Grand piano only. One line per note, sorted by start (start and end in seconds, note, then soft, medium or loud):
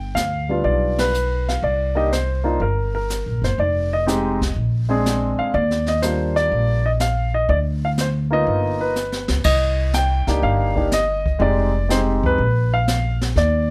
0.00 0.17 G5 medium
0.15 0.66 F5 medium
0.49 1.11 G3 medium
0.49 1.11 B3 soft
0.49 1.11 D4 soft
0.49 1.12 F4 medium
0.64 0.96 D5 medium
0.99 1.50 B4 medium
1.49 1.64 F5 medium
1.64 1.98 D5 medium
1.95 2.10 A#3 medium
1.95 2.10 D4 soft
1.95 2.10 D#4 medium
1.95 2.10 G4 medium
1.95 2.12 D#5 medium
2.13 2.63 C5 medium
2.44 2.58 A#3 medium
2.44 2.59 D4 soft
2.44 2.59 D#4 soft
2.44 2.59 F4 medium
2.62 2.93 A#4 medium
2.95 3.45 A#4 medium
3.44 3.59 C5 medium
3.59 3.94 D5 medium
3.93 4.53 D#5 medium
4.06 4.38 G#3 medium
4.06 4.37 C4 medium
4.06 4.38 D#4 medium
4.06 4.38 G4 medium
4.89 5.50 G#3 medium
4.89 5.51 C4 medium
4.89 5.51 D4 medium
4.89 5.51 G#4 medium
5.39 5.55 F5 medium
5.54 5.89 D5 medium
5.88 6.02 D#5 medium
6.02 6.79 G3 soft
6.02 6.79 A#3 soft
6.02 6.80 D4 soft
6.02 6.80 F4 medium
6.02 6.34 C5 medium
6.36 6.87 D5 loud
6.86 6.91 D#5 medium
7.01 7.32 F5 medium
7.34 7.50 D#5 medium
7.49 7.57 D5 medium
7.85 7.90 F5 medium
8.01 8.08 C5 medium
8.31 8.92 A#3 medium
8.31 8.93 B3 medium
8.31 8.93 D#4 medium
8.31 8.93 F4 medium
8.31 8.93 D#5 medium
8.81 9.47 B4 medium
9.45 9.95 D#5 medium
9.94 10.45 G5 loud
10.27 10.73 A#3 medium
10.27 10.74 D4 medium
10.27 10.74 D#4 soft
10.27 10.74 G4 medium
10.43 10.89 F5 medium
10.75 10.90 A#3 medium
10.75 10.90 D4 medium
10.75 10.90 D#4 soft
10.75 10.91 G4 medium
10.93 11.43 D#5 medium
11.39 11.70 G#3 medium
11.39 11.71 C4 soft
11.39 11.71 D#4 medium
11.39 11.71 G4 medium
11.39 11.92 D5 medium
11.89 12.38 G#3 medium
11.89 12.39 C4 medium
11.89 12.39 D#4 medium
11.89 12.39 G4 medium
11.89 11.99 C5 medium
12.26 12.75 B4 medium
12.74 13.18 F5 medium
13.37 13.70 D5 medium